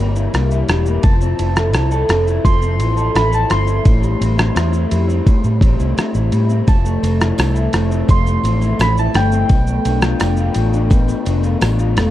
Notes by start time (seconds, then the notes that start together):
Already playing: C3 G3 E4
0.00 G1 A#3
0.16 E4, shaker
0.34 C2 A#3, cross-stick, ride, shaker
0.51 E4, shaker
0.69 E1 G3, cross-stick, ride, shaker
0.86 A#3, shaker
1.03 F1 F3 A5, kick, ride, shaker
1.21 C4, shaker
1.39 F1 E4, ride, shaker
1.56 A4, cross-stick, shaker
1.73 C2 E4, cross-stick, ride, shaker
1.91 A4, shaker
2.09 F1 C4, cross-stick, ride, shaker
2.27 E4, shaker
2.44 F1 F3 C6, kick, ride, shaker
2.62 C4, shaker
2.80 A1 E4, ride, shaker
2.96 A4, shaker
3.14 A1 E4 B5, cross-stick, ride, shaker
3.32 A4 A5, shaker
3.49 G1 C4 C6, cross-stick, ride, shaker
3.66 E4, shaker
3.84 A1 A2, kick, ride, shaker
4.02 G3, shaker
4.20 A1 C4, ride, shaker
4.37 E4, cross-stick, shaker
4.55 E2 C4, cross-stick, ride, shaker
4.72 E4, shaker
4.89 F2 G3, ride, shaker
5.08 C4, shaker
5.25 A2, kick, ride, shaker
5.44 A2 G3, shaker
5.61 A1 C4, kick, ride, shaker
5.79 C2 E4, shaker
5.96 C4, muted fingered electric bass stroke, cross-stick, ride, shaker
6.14 A1 E4, shaker
6.32 A2 G3, ride, shaker
6.49 C4, shaker
6.67 F1 F3 A5, kick, ride, tambourine, shaker
6.85 A3, shaker
7.03 F1 C4, ride, tambourine, shaker
7.20 E4, cross-stick, tambourine, shaker
7.38 C2 C4, cross-stick, ride, tambourine, shaker
7.55 E4, shaker
7.73 F1 A3, cross-stick, ride, tambourine, shaker
7.90 C4, shaker
8.08 F1 F3 C6, kick, ride, tambourine, shaker
8.26 A3, tambourine, shaker
8.43 A1 C4, ride, tambourine, shaker
8.61 E4, tambourine, shaker
8.79 A1 C4 B5, cross-stick, ride, tambourine, shaker
8.98 E4 A5, shaker
9.14 G1 A3 G5, cross-stick, ride, tambourine, shaker
9.32 C4, shaker
9.49 B1 B2, kick, ride, tambourine, shaker
9.67 A3, shaker
9.85 B1 D4, ride, tambourine, shaker
10.02 F4, cross-stick, shaker
10.20 F1 D4, cross-stick, ride, tambourine, shaker
10.37 F4, shaker
10.54 A1 A3, ride, tambourine, shaker
10.73 D4, shaker
10.90 B2, kick, ride, tambourine, shaker
11.08 A3, tambourine, shaker
11.25 F1 D4, ride, tambourine, shaker
11.43 F4, tambourine, shaker
11.61 A1 D4, cross-stick, ride, tambourine, shaker
11.79 F4, shaker
11.96 E1 A3, cross-stick, ride, tambourine, shaker